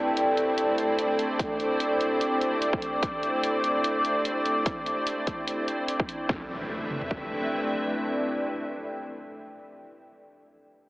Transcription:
0.00 6.25 A3 medium
0.00 6.25 C4 medium
0.00 6.25 E4 medium
0.00 6.28 A4 medium
0.00 6.25 C5 medium
0.00 6.27 D5 medium
0.00 6.29 D5 medium
0.00 6.29 G5 medium
0.17 closed hi-hat medium
0.37 closed hi-hat soft
0.55 6.29 D6 medium
0.55 closed hi-hat medium
0.78 closed hi-hat soft
0.99 closed hi-hat medium
1.19 closed hi-hat soft
1.39 kick loud
1.39 closed hi-hat medium
1.60 closed hi-hat soft
1.80 closed hi-hat medium
2.01 closed hi-hat soft
2.21 closed hi-hat medium
2.41 closed hi-hat soft
2.62 closed hi-hat medium
2.73 kick loud
2.82 closed hi-hat soft
3.03 kick loud
3.03 closed hi-hat medium
3.23 closed hi-hat soft
3.43 closed hi-hat medium
3.64 closed hi-hat medium
3.84 closed hi-hat medium
4.05 closed hi-hat soft
4.25 closed hi-hat medium
4.46 closed hi-hat soft
4.66 kick loud
4.66 closed hi-hat medium
4.86 closed hi-hat soft
5.07 closed hi-hat medium
5.27 kick medium
5.27 closed hi-hat medium
5.48 closed hi-hat medium
5.68 closed hi-hat soft
5.88 closed hi-hat medium
6.00 kick loud
6.09 closed hi-hat medium
6.29 9.41 A3 medium
6.29 9.40 C4 medium
6.29 9.41 E4 medium
6.29 9.41 A4 medium
6.29 9.41 B4 medium
6.29 9.41 E5 medium
6.29 kick loud
6.29 impact medium
6.36 9.47 D5 medium
6.42 9.54 G5 medium
6.90 mid tom medium
7.02 floor tom medium
7.11 kick medium

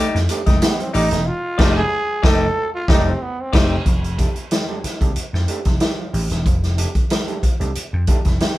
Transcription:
0.00 0.18 A3 medium
0.00 0.18 D#4 loud
0.00 0.18 G4 loud
0.00 0.18 D5 loud
0.15 0.26 F2 medium
0.15 snare soft
0.15 closed hi-hat soft
0.29 0.42 A3 loud
0.29 0.42 D4 medium
0.29 0.42 D#4 medium
0.29 0.42 G4 loud
0.29 muted clean electric guitar stroke soft
0.29 closed hi-hat medium
0.29 tambourine medium
0.46 0.58 F1 loud
0.46 0.56 G#3 medium
0.46 0.62 A3 medium
0.46 0.61 D#4 soft
0.46 0.61 G4 medium
0.46 0.61 D#5 medium
0.46 kick medium
0.46 snare soft
0.46 closed hi-hat soft
0.62 0.72 A3 medium
0.62 0.82 B3 medium
0.62 0.74 D#4 medium
0.62 0.74 G4 medium
0.62 snare loud
0.62 closed hi-hat medium
0.62 tambourine medium
0.79 0.90 F3 medium
0.79 0.94 C4 medium
0.79 muted clean electric guitar stroke medium
0.79 closed hi-hat soft
0.93 1.08 A1 loud
0.93 1.14 A3 medium
0.93 1.10 D#4 loud
0.93 1.06 D#4 medium
0.93 1.28 D#4 medium
0.93 1.10 G4 medium
0.93 1.07 G4 medium
0.93 1.10 D5 loud
0.93 open hi-hat medium
0.93 tambourine medium
1.11 1.27 E1 medium
1.11 1.21 A3 medium
1.11 muted clean electric guitar stroke medium
1.11 snare soft
1.11 closed hi-hat medium
1.26 1.76 F4 loud
1.58 1.81 F1 loud
1.58 1.81 A3 loud
1.58 1.81 A3 medium
1.58 1.82 D4 loud
1.58 1.81 D#4 loud
1.58 1.82 D#4 loud
1.58 1.81 G4 loud
1.58 1.82 G4 loud
1.58 1.81 D5 loud
1.58 kick loud
1.58 snare loud
1.58 crash medium
1.77 2.27 G#4 loud
2.23 2.46 F1 loud
2.23 2.46 A3 loud
2.23 2.46 D#4 loud
2.23 2.46 G4 loud
2.23 2.74 A4 loud
2.23 2.46 D5 loud
2.23 kick loud
2.23 snare loud
2.75 2.91 F4 loud
2.88 3.11 F1 loud
2.88 3.11 A3 loud
2.88 3.11 D4 loud
2.88 3.11 D#4 loud
2.88 3.09 D#4 loud
2.88 3.11 G4 loud
2.88 3.11 D5 loud
2.88 kick loud
2.88 snare loud
3.08 3.23 C4 medium
3.22 3.42 B3 medium
3.41 3.87 C4 loud
3.53 3.76 F1 loud
3.53 3.76 A3 loud
3.53 3.76 D#4 loud
3.53 3.76 G4 loud
3.53 3.75 D5 loud
3.53 kick loud
3.53 snare loud
3.53 crash medium
3.86 4.24 F1 medium
3.86 3.98 F3 medium
3.86 kick loud
3.86 closed hi-hat medium
4.03 4.09 D#4 soft
4.03 4.09 G4 soft
4.03 closed hi-hat soft
4.18 4.30 A3 medium
4.18 4.31 D4 medium
4.18 4.31 D#4 medium
4.18 4.31 G4 medium
4.18 kick medium
4.18 closed hi-hat medium
4.36 closed hi-hat soft
4.51 snare loud
4.51 closed hi-hat medium
4.68 4.79 A3 medium
4.68 4.79 D4 medium
4.68 4.79 D#4 medium
4.68 4.79 G4 medium
4.84 4.96 F3 soft
4.84 muted slap bass stroke soft
4.84 snare soft
4.84 closed hi-hat medium
5.01 5.12 C2 medium
5.01 5.11 A3 medium
5.01 5.11 D4 medium
5.01 5.12 D#4 medium
5.01 5.12 G4 medium
5.01 kick medium
5.01 closed hi-hat soft
5.16 muted slap bass stroke soft
5.16 closed hi-hat medium
5.33 5.45 F2 medium
5.33 snare soft
5.48 5.60 A3 medium
5.48 5.60 D4 medium
5.48 5.61 D#4 medium
5.48 5.61 G4 loud
5.48 closed hi-hat medium
5.65 5.77 F1 medium
5.65 kick medium
5.65 snare soft
5.65 closed hi-hat soft
5.80 5.93 D#4 medium
5.80 5.93 G4 medium
5.80 snare medium
5.80 closed hi-hat medium
5.98 6.09 F3 medium
6.13 6.26 A1 medium
6.13 6.25 D#4 medium
6.13 6.26 G4 medium
6.13 open hi-hat medium
6.30 6.46 E1 medium
6.30 snare soft
6.30 closed hi-hat soft
6.46 6.84 F1 medium
6.46 6.58 F3 medium
6.46 kick medium
6.46 closed hi-hat medium
6.63 6.69 D#4 soft
6.63 6.69 G4 soft
6.63 snare soft
6.63 closed hi-hat soft
6.78 6.90 A3 medium
6.78 6.90 D4 medium
6.78 6.90 D#4 medium
6.78 6.90 G4 medium
6.78 closed hi-hat medium
6.95 kick medium
6.95 closed hi-hat soft
7.10 snare loud
7.10 closed hi-hat medium
7.27 7.38 A3 medium
7.27 7.39 D4 medium
7.27 7.39 D#4 medium
7.27 7.39 G4 medium
7.27 closed hi-hat soft
7.43 7.55 F3 medium
7.43 muted slap bass stroke soft
7.43 kick medium
7.43 closed hi-hat medium
7.60 7.72 C2 medium
7.60 7.71 A3 medium
7.60 7.71 D4 medium
7.60 7.71 D#4 medium
7.60 7.71 G4 medium
7.60 closed hi-hat soft
7.75 closed hi-hat medium
7.93 8.05 F2 medium
8.07 8.20 A3 loud
8.07 8.20 D4 medium
8.07 8.20 D#4 medium
8.07 8.20 G4 loud
8.07 kick loud
8.07 closed hi-hat medium
8.25 8.37 F1 medium
8.25 kick medium
8.25 snare soft
8.25 closed hi-hat soft
8.40 8.53 D#4 medium
8.40 8.53 G4 medium
8.40 snare loud
8.40 closed hi-hat medium

